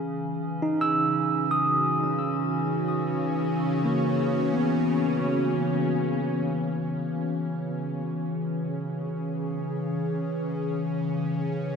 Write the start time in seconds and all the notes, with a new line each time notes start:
Already playing: C#3 E3 C#4 G#4
0.62 D#4
0.81 E6
1.21 C#3 C#4
1.48 F#4 D#6
2.04 C#4
3.85 A#3
4.54 B3
6.75 C#3 C#4
7.96 G#4